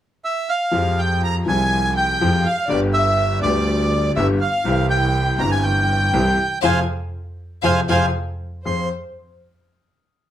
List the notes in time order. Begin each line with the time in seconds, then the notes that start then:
0.25 E5
0.49 F5
0.71 F2 F3 G#3 C4 G4
0.97 G5
1.24 A#5
1.46 C2 C3 F3 G#3 C4 G#5
1.50 G3
1.96 G5
2.21 F2 F3 G#3 C4 G4
2.44 F5
2.68 G1 G2 D3 G3 B3 G4 D5
2.94 E5
3.42 D2 D3 G3 B3 D5
3.46 G4
4.16 G1 G2 D3 G3 B3 G4 E5
4.39 F5
4.64 C2 C3 E3 G3 C4 G4
4.90 G5
5.37 G1 G2 E3 G3 C4 A#5
5.41 G4
5.51 G#5
5.63 G5
6.13 C2 C3 E3 G3 C4 G4
6.62 F2 C3 F3 G#3 C5 F5 G#5
7.62 F2 C3 F3 G#3 C5 F5 G#5
7.88 F2 C3 F3 G#3 C5 F5 G#5
8.65 F2 C4 F4 G#4 C5 C6